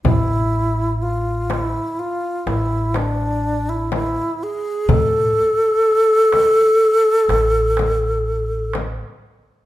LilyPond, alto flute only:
\new Staff \with { instrumentName = "Alto flute" } { \time 10/8 \tempo 4 = 62 e'4 f'8 e'8 f'8 e'8 d'8. e'16 e'8 gis'8 | a'1 r4 | }